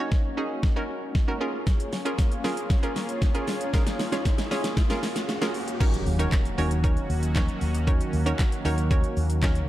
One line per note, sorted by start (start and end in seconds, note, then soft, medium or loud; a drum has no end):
0.00 1.37 A#3 medium
0.00 0.20 C#4 medium
0.00 5.77 C#4 medium
0.00 0.20 D#4 medium
0.00 1.37 D#4 medium
0.00 0.20 F#4 medium
0.00 1.37 F#4 medium
0.00 0.20 C#5 medium
0.00 5.77 C#5 medium
0.00 riser medium
0.12 kick loud
0.12 snare medium
0.37 0.59 C#4 medium
0.37 0.59 D#4 medium
0.37 0.59 F#4 medium
0.37 0.59 G#4 loud
0.63 kick loud
0.63 snare medium
0.76 1.05 C#4 medium
0.76 1.05 D#4 medium
0.76 1.05 F#4 medium
0.76 1.05 A#4 loud
1.15 kick loud
1.15 snare medium
1.28 1.39 C#4 medium
1.28 1.41 D#4 medium
1.28 1.41 F#4 medium
1.28 1.40 A#4 loud
1.41 5.77 A#3 medium
1.41 1.92 C#4 medium
1.41 1.93 F4 medium
1.41 5.77 F4 medium
1.41 5.77 G#4 medium
1.41 1.93 G#4 medium
1.41 1.93 A#4 loud
1.67 kick loud
1.67 snare medium
1.67 shaker medium
1.80 closed hi-hat medium
1.80 shaker medium
1.93 snare medium
1.93 open hi-hat medium
1.93 shaker soft
2.05 2.27 C#4 medium
2.05 2.27 F4 medium
2.05 2.27 G#4 medium
2.05 2.27 A#4 loud
2.05 closed hi-hat medium
2.05 shaker medium
2.18 kick loud
2.18 snare medium
2.18 shaker medium
2.32 closed hi-hat medium
2.32 shaker soft
2.44 2.66 C#4 medium
2.44 2.66 F4 medium
2.44 2.66 G#4 medium
2.44 2.66 A#4 loud
2.44 snare medium
2.44 open hi-hat medium
2.44 shaker medium
2.57 closed hi-hat medium
2.57 shaker medium
2.70 kick loud
2.70 snare medium
2.70 shaker medium
2.83 3.11 C#4 medium
2.83 3.11 F4 medium
2.83 3.11 G#4 medium
2.83 3.12 A#4 loud
2.83 closed hi-hat soft
2.83 shaker soft
2.96 snare medium
2.96 open hi-hat medium
2.96 shaker medium
3.09 closed hi-hat medium
3.09 shaker medium
3.22 kick loud
3.22 snare medium
3.22 shaker medium
3.35 3.56 C#4 medium
3.35 3.56 F4 medium
3.35 3.56 G#4 medium
3.35 3.56 A#4 medium
3.35 closed hi-hat soft
3.35 shaker soft
3.47 snare loud
3.47 open hi-hat medium
3.47 shaker medium
3.61 closed hi-hat medium
3.61 shaker medium
3.73 3.95 C#4 medium
3.73 3.95 F4 medium
3.73 3.95 G#4 medium
3.73 3.95 A#4 loud
3.73 kick loud
3.73 snare loud
3.73 shaker medium
3.87 snare loud
3.87 closed hi-hat medium
3.87 shaker medium
3.99 snare loud
3.99 open hi-hat medium
3.99 shaker soft
4.12 4.34 C#4 medium
4.12 4.34 F4 medium
4.12 4.34 G#4 medium
4.12 4.34 C#5 medium
4.12 snare loud
4.12 closed hi-hat medium
4.12 shaker medium
4.25 kick loud
4.25 snare loud
4.25 shaker medium
4.38 snare loud
4.38 closed hi-hat medium
4.38 shaker medium
4.51 4.72 C#4 medium
4.51 4.72 F4 medium
4.51 4.73 G#4 medium
4.51 4.73 C#5 loud
4.51 snare loud
4.51 open hi-hat medium
4.51 shaker medium
4.64 snare loud
4.64 closed hi-hat medium
4.64 shaker medium
4.77 kick loud
4.77 snare loud
4.77 shaker medium
4.90 5.18 C#4 medium
4.90 5.18 F4 medium
4.90 5.18 G#4 medium
4.90 5.18 A#4 loud
4.90 snare loud
4.90 closed hi-hat soft
4.90 shaker soft
5.03 snare loud
5.03 open hi-hat medium
5.03 shaker medium
5.16 snare loud
5.16 closed hi-hat medium
5.16 shaker medium
5.29 snare loud
5.29 shaker medium
5.41 5.63 C#4 medium
5.41 5.63 F4 medium
5.41 5.63 G#4 medium
5.41 5.63 A#4 medium
5.41 snare loud
5.41 closed hi-hat soft
5.41 shaker soft
5.54 open hi-hat medium
5.54 shaker medium
5.68 closed hi-hat medium
5.68 shaker medium
5.80 9.65 D#3 medium
5.80 9.65 F#3 medium
5.80 9.69 A#3 medium
5.80 6.02 C#4 medium
5.80 9.65 C#4 medium
5.80 6.02 D#4 medium
5.80 9.65 F#4 medium
5.80 6.02 F#4 medium
5.80 6.02 A#4 medium
5.80 6.02 C#5 loud
5.80 kick loud
5.80 crash loud
5.80 impact medium
5.80 shaker medium
5.94 closed hi-hat medium
5.94 shaker medium
6.06 6.25 D#2 medium
6.06 open hi-hat medium
6.06 shaker soft
6.19 6.40 C#4 medium
6.19 6.41 D#4 medium
6.19 6.41 F#4 medium
6.19 6.41 A#4 medium
6.19 6.41 C#5 loud
6.19 closed hi-hat medium
6.19 shaker medium
6.32 kick loud
6.32 snare loud
6.32 clap loud
6.32 shaker medium
6.45 closed hi-hat medium
6.45 shaker medium
6.58 6.95 D#2 medium
6.58 6.72 C#4 medium
6.58 6.72 D#4 medium
6.58 6.72 F#4 medium
6.58 6.72 A#4 medium
6.58 6.72 C#5 loud
6.58 open hi-hat medium
6.58 shaker medium
6.71 closed hi-hat medium
6.71 shaker medium
6.84 7.12 C#4 medium
6.84 7.12 D#4 medium
6.84 7.12 F#4 medium
6.84 7.12 A#4 medium
6.84 7.12 C#5 medium
6.84 kick loud
6.84 shaker medium
6.97 closed hi-hat soft
6.97 shaker soft
7.10 7.47 D#2 medium
7.10 open hi-hat medium
7.10 shaker medium
7.23 closed hi-hat medium
7.23 shaker medium
7.35 7.64 C#4 medium
7.35 7.64 D#4 medium
7.35 7.64 F#4 medium
7.35 7.64 A#4 medium
7.35 7.64 C#5 loud
7.35 kick loud
7.35 snare medium
7.35 clap loud
7.35 shaker medium
7.49 closed hi-hat soft
7.49 shaker soft
7.61 7.99 D#2 medium
7.61 open hi-hat medium
7.61 shaker medium
7.75 closed hi-hat medium
7.75 shaker medium
7.87 8.08 C#4 medium
7.87 8.09 D#4 medium
7.87 8.09 F#4 medium
7.87 8.09 A#4 medium
7.87 8.09 C#5 loud
7.87 kick loud
7.87 shaker medium
8.01 closed hi-hat medium
8.01 shaker medium
8.13 8.32 D#2 medium
8.13 open hi-hat medium
8.13 shaker medium
8.26 8.47 C#4 medium
8.26 8.47 D#4 medium
8.26 8.47 F#4 medium
8.26 8.48 A#4 medium
8.26 8.48 C#5 loud
8.26 closed hi-hat medium
8.26 shaker medium
8.39 kick loud
8.39 snare loud
8.39 clap loud
8.39 shaker loud
8.52 closed hi-hat medium
8.52 shaker medium
8.65 9.02 D#2 medium
8.65 8.79 C#4 medium
8.65 8.79 D#4 medium
8.65 8.79 F#4 medium
8.65 8.79 A#4 medium
8.65 8.79 C#5 loud
8.65 open hi-hat medium
8.65 shaker medium
8.78 closed hi-hat medium
8.78 shaker medium
8.91 9.19 C#4 medium
8.91 9.19 D#4 medium
8.91 9.19 F#4 medium
8.91 9.19 A#4 medium
8.91 9.19 C#5 loud
8.91 kick loud
8.91 shaker medium
9.04 closed hi-hat soft
9.04 shaker soft
9.17 9.69 D#2 medium
9.17 open hi-hat medium
9.17 shaker medium
9.30 closed hi-hat medium
9.30 shaker medium
9.43 9.67 C#4 medium
9.43 9.68 D#4 medium
9.43 9.69 F#4 medium
9.43 9.68 A#4 medium
9.43 9.68 C#5 medium
9.43 kick loud
9.43 snare loud
9.43 clap loud
9.43 shaker medium
9.55 closed hi-hat soft
9.55 shaker soft